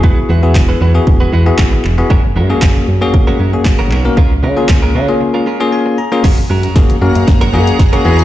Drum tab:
CC |----------------|----------------|----------------|x---------------|
HH |----------------|----------------|----------------|xx-xxx-xxx-xxx-x|
CP |----x-------x-x-|----x-------x-x-|----x-----------|----------------|
SD |----o-------o---|----o-------o---|----o-----------|o---o---o---o---|
BD |o---o---o---o---|o---o---o---o---|o---o-----------|o---o---o---o---|